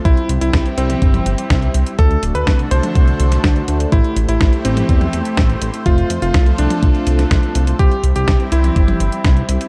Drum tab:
HH |xxxxxxxxxxxxxxxx|xxxxxxxxxxxxxxxx|xxxxxxxxxxxxxxxx|xxxxxxxxxxxxxxxx|
SD |----o-------o---|----o------oo---|----o-------o---|----o------oo---|
T1 |-------o-o------|-------o--------|-------o-o------|-------o--------|
BD |o---o---o---o---|o---o---o---o---|o---o---o---o---|o---o---o---o---|

HH |xxxxxxxxxxxxxxxx|
SD |----o-------o---|
T1 |-------o-o------|
BD |o---o---o---o---|